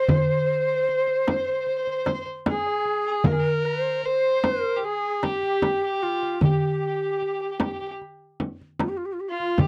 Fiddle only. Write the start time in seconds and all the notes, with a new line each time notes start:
0.02 C5
0.09 C5
0.15 C5
0.22 C5
0.30 C5
0.37 C5
0.45 C5
0.52 C5
0.60 C5
0.67 C5
0.75 C5
0.82 C5
0.89 C5
0.97 C5
1.06 C5
1.13 C5
1.21 C5
1.30 C5
1.37 C5
1.45 C5
1.53 C5
1.60 C5
1.68 C5
1.78 C5
1.84 C5
1.91 C5
1.98 C5
2.06 C5
2.14 C5
2.22 C5
2.47 G#4
3.06 G#4
3.26 A#4
3.32 G#4
3.39 A#4
4.05 C5
4.77 G4
4.84 G#4
5.23 G4
5.83 G4
6.43 G4
6.50 G4
6.59 G4
6.67 G4
6.73 G4
6.80 G4
6.87 G4
6.96 G4
7.02 G4
7.11 G4
7.18 G4
7.27 G4
7.33 G4
7.41 G4
7.51 G4
7.59 G4
7.65 G4
7.72 G4
7.80 G4
7.88 G4
9.30 F4
9.60 G4